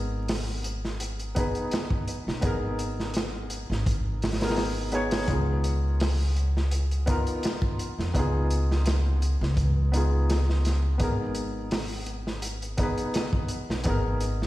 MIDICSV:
0, 0, Header, 1, 4, 480
1, 0, Start_track
1, 0, Tempo, 714286
1, 1633, Time_signature, 4, 2, 24, 8
1, 9723, End_track
2, 0, Start_track
2, 0, Title_t, "Felt piano"
2, 0, Program_c, 0, 0
2, 0, Control_c, 0, 64, 127
2, 0, Note_on_c, 0, 59, 66
2, 0, Note_on_c, 0, 63, 59
2, 0, Note_on_c, 0, 68, 62
2, 0, Note_on_c, 0, 70, 78
2, 884, Note_off_c, 0, 59, 0
2, 889, Note_off_c, 0, 63, 0
2, 895, Note_off_c, 0, 68, 0
2, 901, Note_off_c, 0, 70, 0
2, 906, Note_on_c, 0, 59, 83
2, 918, Note_on_c, 0, 63, 76
2, 928, Note_on_c, 0, 68, 74
2, 939, Note_on_c, 0, 71, 85
2, 1603, Note_off_c, 0, 59, 0
2, 1609, Note_off_c, 0, 63, 0
2, 1614, Note_off_c, 0, 68, 0
2, 1619, Note_off_c, 0, 71, 0
2, 1622, Note_on_c, 0, 59, 86
2, 1631, Note_on_c, 0, 63, 73
2, 1644, Note_on_c, 0, 68, 77
2, 1657, Note_on_c, 0, 70, 89
2, 2925, Note_off_c, 0, 59, 0
2, 2930, Note_off_c, 0, 63, 0
2, 2936, Note_off_c, 0, 68, 0
2, 2943, Note_off_c, 0, 70, 0
2, 2961, Note_on_c, 0, 59, 73
2, 2969, Note_on_c, 0, 63, 75
2, 2971, Note_on_c, 0, 68, 72
2, 2980, Note_on_c, 0, 70, 92
2, 3286, Note_off_c, 0, 59, 0
2, 3290, Note_off_c, 0, 63, 0
2, 3291, Note_off_c, 0, 68, 0
2, 3295, Note_off_c, 0, 70, 0
2, 3307, Note_on_c, 0, 59, 87
2, 3313, Note_on_c, 0, 63, 75
2, 3320, Note_on_c, 0, 68, 83
2, 3325, Note_on_c, 0, 73, 98
2, 3523, Note_off_c, 0, 59, 0
2, 3527, Note_off_c, 0, 63, 0
2, 3530, Note_off_c, 0, 68, 0
2, 3533, Note_off_c, 0, 73, 0
2, 3543, Note_on_c, 0, 59, 72
2, 3555, Note_on_c, 0, 63, 62
2, 3562, Control_c, 0, 64, 0
2, 3564, Note_on_c, 0, 65, 64
2, 3579, Note_on_c, 0, 68, 73
2, 3673, Control_c, 0, 64, 127
2, 4721, Note_off_c, 0, 59, 0
2, 4727, Note_off_c, 0, 63, 0
2, 4732, Note_off_c, 0, 65, 0
2, 4739, Note_off_c, 0, 68, 0
2, 4745, Note_on_c, 0, 59, 89
2, 4753, Note_on_c, 0, 63, 77
2, 4768, Note_on_c, 0, 65, 81
2, 4779, Note_on_c, 0, 70, 89
2, 5442, Note_off_c, 0, 59, 0
2, 5447, Note_off_c, 0, 63, 0
2, 5454, Note_off_c, 0, 65, 0
2, 5459, Note_off_c, 0, 70, 0
2, 5467, Note_on_c, 0, 59, 81
2, 5479, Note_on_c, 0, 63, 78
2, 5490, Note_on_c, 0, 65, 73
2, 5502, Note_on_c, 0, 68, 93
2, 6648, Note_off_c, 0, 59, 0
2, 6654, Note_off_c, 0, 63, 0
2, 6660, Note_off_c, 0, 65, 0
2, 6664, Note_on_c, 0, 59, 79
2, 6665, Note_off_c, 0, 68, 0
2, 6676, Note_on_c, 0, 63, 69
2, 6690, Note_on_c, 0, 65, 72
2, 6700, Note_on_c, 0, 68, 82
2, 7362, Note_off_c, 0, 59, 0
2, 7368, Note_off_c, 0, 63, 0
2, 7375, Note_off_c, 0, 65, 0
2, 7379, Note_on_c, 0, 59, 72
2, 7380, Note_off_c, 0, 68, 0
2, 7391, Note_on_c, 0, 63, 65
2, 7403, Control_c, 0, 64, 0
2, 7404, Note_on_c, 0, 68, 65
2, 7416, Note_on_c, 0, 70, 76
2, 7513, Control_c, 0, 64, 127
2, 8559, Note_off_c, 0, 59, 0
2, 8565, Note_off_c, 0, 63, 0
2, 8572, Note_off_c, 0, 68, 0
2, 8578, Note_off_c, 0, 70, 0
2, 8584, Note_on_c, 0, 59, 81
2, 8594, Note_on_c, 0, 63, 74
2, 8609, Note_on_c, 0, 68, 76
2, 8620, Note_on_c, 0, 71, 91
2, 9282, Note_off_c, 0, 59, 0
2, 9287, Note_off_c, 0, 63, 0
2, 9294, Note_off_c, 0, 68, 0
2, 9300, Note_off_c, 0, 71, 0
2, 9302, Note_on_c, 0, 59, 80
2, 9314, Note_on_c, 0, 63, 70
2, 9326, Note_on_c, 0, 68, 80
2, 9338, Note_on_c, 0, 70, 90
2, 9723, Note_off_c, 0, 59, 0
2, 9723, Note_off_c, 0, 63, 0
2, 9723, Note_off_c, 0, 68, 0
2, 9723, Note_off_c, 0, 70, 0
2, 9723, End_track
3, 0, Start_track
3, 0, Title_t, "Upright bass"
3, 0, Program_c, 1, 32
3, 0, Note_on_c, 1, 32, 82
3, 1017, Note_off_c, 1, 32, 0
3, 1525, Note_on_c, 1, 35, 74
3, 1621, Note_off_c, 1, 35, 0
3, 1633, Note_on_c, 1, 32, 85
3, 2457, Note_off_c, 1, 32, 0
3, 2485, Note_on_c, 1, 32, 87
3, 3533, Note_off_c, 1, 32, 0
3, 3549, Note_on_c, 1, 37, 86
3, 4855, Note_off_c, 1, 37, 0
3, 5365, Note_on_c, 1, 41, 77
3, 5461, Note_off_c, 1, 41, 0
3, 5475, Note_on_c, 1, 37, 85
3, 6298, Note_off_c, 1, 37, 0
3, 6325, Note_on_c, 1, 37, 97
3, 7373, Note_off_c, 1, 37, 0
3, 7396, Note_on_c, 1, 32, 84
3, 8699, Note_off_c, 1, 32, 0
3, 9203, Note_on_c, 1, 35, 73
3, 9300, Note_off_c, 1, 35, 0
3, 9312, Note_on_c, 1, 32, 83
3, 9723, Note_off_c, 1, 32, 0
3, 9723, End_track
4, 0, Start_track
4, 0, Title_t, "Drums"
4, 191, Note_on_c, 9, 46, 69
4, 197, Note_on_c, 9, 38, 109
4, 258, Note_off_c, 9, 46, 0
4, 264, Note_off_c, 9, 38, 0
4, 431, Note_on_c, 9, 42, 56
4, 498, Note_off_c, 9, 42, 0
4, 569, Note_on_c, 9, 38, 35
4, 636, Note_off_c, 9, 38, 0
4, 672, Note_on_c, 9, 42, 77
4, 739, Note_off_c, 9, 42, 0
4, 803, Note_on_c, 9, 42, 35
4, 870, Note_off_c, 9, 42, 0
4, 915, Note_on_c, 9, 42, 69
4, 918, Note_on_c, 9, 36, 77
4, 982, Note_off_c, 9, 42, 0
4, 985, Note_off_c, 9, 36, 0
4, 1041, Note_on_c, 9, 42, 42
4, 1108, Note_off_c, 9, 42, 0
4, 1152, Note_on_c, 9, 42, 72
4, 1167, Note_on_c, 9, 38, 89
4, 1219, Note_off_c, 9, 42, 0
4, 1234, Note_off_c, 9, 38, 0
4, 1280, Note_on_c, 9, 36, 83
4, 1347, Note_off_c, 9, 36, 0
4, 1395, Note_on_c, 9, 42, 57
4, 1462, Note_off_c, 9, 42, 0
4, 1532, Note_on_c, 9, 38, 45
4, 1600, Note_off_c, 9, 38, 0
4, 1627, Note_on_c, 9, 42, 77
4, 1633, Note_on_c, 9, 36, 89
4, 1694, Note_off_c, 9, 42, 0
4, 1700, Note_off_c, 9, 36, 0
4, 1874, Note_on_c, 9, 42, 53
4, 1941, Note_off_c, 9, 42, 0
4, 2014, Note_on_c, 9, 38, 40
4, 2081, Note_off_c, 9, 38, 0
4, 2108, Note_on_c, 9, 42, 75
4, 2128, Note_on_c, 9, 38, 118
4, 2175, Note_off_c, 9, 42, 0
4, 2195, Note_off_c, 9, 38, 0
4, 2352, Note_on_c, 9, 42, 58
4, 2419, Note_off_c, 9, 42, 0
4, 2497, Note_on_c, 9, 38, 42
4, 2564, Note_off_c, 9, 38, 0
4, 2596, Note_on_c, 9, 36, 110
4, 2597, Note_on_c, 9, 42, 82
4, 2663, Note_off_c, 9, 36, 0
4, 2664, Note_off_c, 9, 42, 0
4, 2837, Note_on_c, 9, 46, 52
4, 2846, Note_on_c, 9, 38, 91
4, 2899, Note_off_c, 9, 46, 0
4, 2899, Note_on_c, 9, 46, 53
4, 2909, Note_off_c, 9, 38, 0
4, 2909, Note_on_c, 9, 38, 76
4, 2961, Note_off_c, 9, 46, 0
4, 2961, Note_on_c, 9, 46, 58
4, 2969, Note_off_c, 9, 38, 0
4, 2969, Note_on_c, 9, 38, 81
4, 3015, Note_off_c, 9, 46, 0
4, 3015, Note_on_c, 9, 46, 52
4, 3023, Note_off_c, 9, 38, 0
4, 3023, Note_on_c, 9, 38, 86
4, 3066, Note_off_c, 9, 46, 0
4, 3066, Note_on_c, 9, 46, 67
4, 3075, Note_off_c, 9, 38, 0
4, 3075, Note_on_c, 9, 38, 101
4, 3133, Note_off_c, 9, 46, 0
4, 3142, Note_off_c, 9, 38, 0
4, 3304, Note_on_c, 9, 42, 53
4, 3372, Note_off_c, 9, 42, 0
4, 3435, Note_on_c, 9, 46, 66
4, 3443, Note_on_c, 9, 38, 105
4, 3502, Note_off_c, 9, 46, 0
4, 3510, Note_off_c, 9, 38, 0
4, 3546, Note_on_c, 9, 42, 77
4, 3549, Note_on_c, 9, 36, 88
4, 3613, Note_off_c, 9, 42, 0
4, 3616, Note_off_c, 9, 36, 0
4, 3790, Note_on_c, 9, 42, 57
4, 3857, Note_off_c, 9, 42, 0
4, 4032, Note_on_c, 9, 46, 79
4, 4041, Note_on_c, 9, 38, 115
4, 4099, Note_off_c, 9, 46, 0
4, 4108, Note_off_c, 9, 38, 0
4, 4277, Note_on_c, 9, 42, 56
4, 4344, Note_off_c, 9, 42, 0
4, 4414, Note_on_c, 9, 38, 40
4, 4481, Note_off_c, 9, 38, 0
4, 4512, Note_on_c, 9, 42, 82
4, 4579, Note_off_c, 9, 42, 0
4, 4646, Note_on_c, 9, 42, 37
4, 4713, Note_off_c, 9, 42, 0
4, 4753, Note_on_c, 9, 42, 64
4, 4757, Note_on_c, 9, 36, 79
4, 4821, Note_off_c, 9, 42, 0
4, 4825, Note_off_c, 9, 36, 0
4, 4884, Note_on_c, 9, 42, 40
4, 4951, Note_off_c, 9, 42, 0
4, 4993, Note_on_c, 9, 42, 79
4, 5009, Note_on_c, 9, 38, 93
4, 5060, Note_off_c, 9, 42, 0
4, 5076, Note_off_c, 9, 38, 0
4, 5119, Note_on_c, 9, 36, 94
4, 5187, Note_off_c, 9, 36, 0
4, 5237, Note_on_c, 9, 42, 62
4, 5304, Note_off_c, 9, 42, 0
4, 5372, Note_on_c, 9, 38, 40
4, 5439, Note_off_c, 9, 38, 0
4, 5474, Note_on_c, 9, 36, 91
4, 5475, Note_on_c, 9, 42, 84
4, 5541, Note_off_c, 9, 36, 0
4, 5542, Note_off_c, 9, 42, 0
4, 5715, Note_on_c, 9, 42, 55
4, 5782, Note_off_c, 9, 42, 0
4, 5857, Note_on_c, 9, 38, 39
4, 5924, Note_off_c, 9, 38, 0
4, 5951, Note_on_c, 9, 42, 83
4, 5964, Note_on_c, 9, 38, 108
4, 6018, Note_off_c, 9, 42, 0
4, 6031, Note_off_c, 9, 38, 0
4, 6196, Note_on_c, 9, 42, 56
4, 6264, Note_off_c, 9, 42, 0
4, 6335, Note_on_c, 9, 38, 43
4, 6402, Note_off_c, 9, 38, 0
4, 6430, Note_on_c, 9, 36, 103
4, 6430, Note_on_c, 9, 42, 79
4, 6497, Note_off_c, 9, 36, 0
4, 6497, Note_off_c, 9, 42, 0
4, 6676, Note_on_c, 9, 42, 62
4, 6743, Note_off_c, 9, 42, 0
4, 6919, Note_on_c, 9, 42, 69
4, 6925, Note_on_c, 9, 38, 104
4, 6986, Note_off_c, 9, 42, 0
4, 6993, Note_off_c, 9, 38, 0
4, 7053, Note_on_c, 9, 38, 40
4, 7121, Note_off_c, 9, 38, 0
4, 7156, Note_on_c, 9, 42, 72
4, 7167, Note_on_c, 9, 38, 43
4, 7224, Note_off_c, 9, 42, 0
4, 7234, Note_off_c, 9, 38, 0
4, 7389, Note_on_c, 9, 42, 84
4, 7393, Note_on_c, 9, 36, 104
4, 7456, Note_off_c, 9, 42, 0
4, 7461, Note_off_c, 9, 36, 0
4, 7624, Note_on_c, 9, 42, 55
4, 7692, Note_off_c, 9, 42, 0
4, 7869, Note_on_c, 9, 46, 85
4, 7876, Note_on_c, 9, 38, 116
4, 7937, Note_off_c, 9, 46, 0
4, 7943, Note_off_c, 9, 38, 0
4, 8107, Note_on_c, 9, 42, 62
4, 8174, Note_off_c, 9, 42, 0
4, 8246, Note_on_c, 9, 38, 38
4, 8313, Note_off_c, 9, 38, 0
4, 8347, Note_on_c, 9, 42, 88
4, 8415, Note_off_c, 9, 42, 0
4, 8482, Note_on_c, 9, 42, 37
4, 8549, Note_off_c, 9, 42, 0
4, 8586, Note_on_c, 9, 42, 61
4, 8590, Note_on_c, 9, 36, 89
4, 8653, Note_off_c, 9, 42, 0
4, 8658, Note_off_c, 9, 36, 0
4, 8720, Note_on_c, 9, 42, 45
4, 8787, Note_off_c, 9, 42, 0
4, 8829, Note_on_c, 9, 42, 80
4, 8841, Note_on_c, 9, 38, 102
4, 8897, Note_off_c, 9, 42, 0
4, 8908, Note_off_c, 9, 38, 0
4, 8956, Note_on_c, 9, 36, 94
4, 9023, Note_off_c, 9, 36, 0
4, 9061, Note_on_c, 9, 42, 61
4, 9128, Note_off_c, 9, 42, 0
4, 9208, Note_on_c, 9, 38, 50
4, 9275, Note_off_c, 9, 38, 0
4, 9298, Note_on_c, 9, 42, 81
4, 9311, Note_on_c, 9, 36, 100
4, 9365, Note_off_c, 9, 42, 0
4, 9378, Note_off_c, 9, 36, 0
4, 9546, Note_on_c, 9, 42, 62
4, 9613, Note_off_c, 9, 42, 0
4, 9691, Note_on_c, 9, 38, 36
4, 9723, Note_off_c, 9, 38, 0
4, 9723, End_track
0, 0, End_of_file